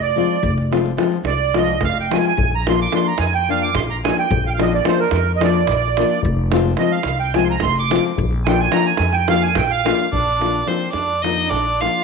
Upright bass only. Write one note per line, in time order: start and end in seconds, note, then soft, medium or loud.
0.00 0.20 F1 medium
0.43 0.91 F1 loud
1.23 1.83 C2 medium
1.81 2.15 F1 medium
2.37 2.86 A#1 medium
3.18 3.76 F2 medium
3.75 4.09 A#1 medium
4.31 4.79 A#1 loud
5.12 5.70 F2 medium
5.68 6.02 A#1 medium
6.25 6.73 F1 loud
7.04 7.63 C2 medium
7.62 7.96 F1 medium
8.18 8.67 A#1 loud
8.99 9.58 F2 medium
9.56 9.90 A#1 medium
10.14 10.62 A#1 medium
10.94 11.52 F2 medium
11.51 11.85 A#1 medium